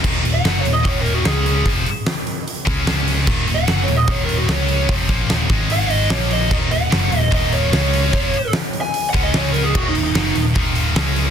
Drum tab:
CC |x-------|--------|x-------|--------|
HH |-ooooooo|oooooooo|-ooooooo|oooooooo|
SD |--o---o-|--o---o-|--o---o-|--o---o-|
BD |o---o---|o----o--|o---o---|oo-o----|

CC |x-------|--------|x-------|
HH |-ooooooo|oooooooo|-ooooooo|
SD |--o---o-|--o---o-|--o---o-|
BD |o---o---|o----o--|o---o---|